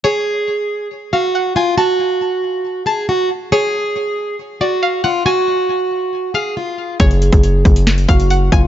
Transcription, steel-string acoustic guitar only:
X:1
M:4/4
L:1/8
Q:1/4=138
K:F#m
V:1 name="Steel-string acoustic guitar"
G4 z F2 ^E | F4- F G F z | G4 z F2 ^E | F4- F G ^E2 |
G4 z F2 ^E |]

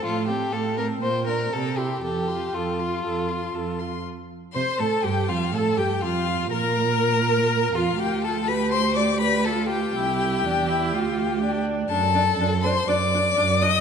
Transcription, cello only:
X:1
M:4/4
L:1/8
Q:1/4=122
K:F
V:1 name="Cello" clef=bass
A,,2 A,,2 B,,2 C,2 | F,,2 F,,2 F,,2 F,,2 | z2 C, A,, G,, F,, A,, G,, | F,,2 B,,4- B,, F,, |
D,,8 | C,,2 E,,2 D,,4 | [K:Dphr] ^F,,2 F,,2 F,,2 F,,2 |]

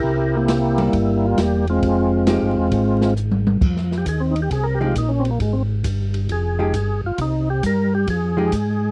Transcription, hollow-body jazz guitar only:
X:1
M:4/4
L:1/8
Q:"Swing" 1/4=134
K:Fm
V:1 name="Hollow-body jazz guitar"
z3 [G,B,=E] z4 | z2 [F,A,EG] z4 z | z4 z [F,A,EG] z2 | z4 z [F,A,EG] z2 |
z4 z [F,A,EG] z2 |]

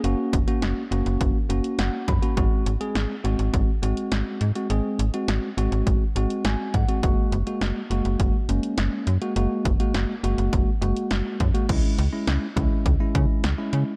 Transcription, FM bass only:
X:1
M:4/4
L:1/16
Q:1/4=103
K:F#mix
V:1 name="FM bass" clef=bass
F,,, z F,,, z F,,, z F,,, F,,, F,,, z F,,, z F,,, z F,, z | G,,, z G,,, z G,,, z G,,, G,,, G,,, z G,,, z G,,, z G,, z | G,,, z G,,, z G,,, z G,,, G,,, G,,, z G,,, z G,,, z G,, z | F,,, z F,,, z F,,, z F,,, F,,, F,,, z F,,, z F,,, z F,, z |
F,,, z F,,, z F,,, z F,,, F,,, F,,, z F,,, z F,,, z F,, z | C,, z C,, z C,, z C,, z C,, z C, z C,, z C, z |]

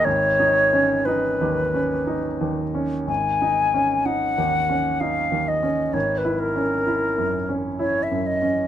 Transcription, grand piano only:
X:1
M:3/4
L:1/8
Q:1/4=64
K:G#m
V:1 name="Grand piano"
(3G,,, D C (3D D,, C (3D D,, C | (3G,,, D C (3D D,, C (3D D,, C | (3G,,, E C (3E F,, C (3E F,, C |]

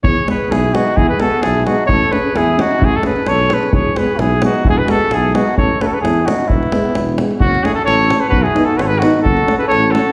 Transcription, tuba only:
X:1
M:2/4
L:1/8
Q:"Swing 16ths" 1/4=130
K:E
V:1 name="Tuba" clef=bass
E,, z B,,,2 | E,, z B,,,2 | A,,, z E,,2 | A,,, z B,,,2 |
E,,, z B,,,2 | E,,, z B,,,2 | A,,, z E,,2 | E,,, z E,,,2 |
F,,, z A,,,2 | B,,, z G,,,2 | F,,, z A,,,2 |]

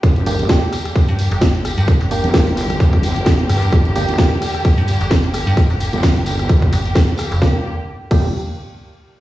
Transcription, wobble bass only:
X:1
M:4/4
L:1/16
Q:"Swing 16ths" 1/4=130
K:Gm
V:1 name="Wobble bass" clef=bass
G,,,3 G,,,2 z8 z3 | z3 G,,,2 G,,,3 G,,,3 G,,,3 G,,2 | G,,,3 G,,,2 z8 z3 | z3 G,,,2 G,,,3 G,,,2 z6 |
G,,, z4 z G,,,2 z8 |]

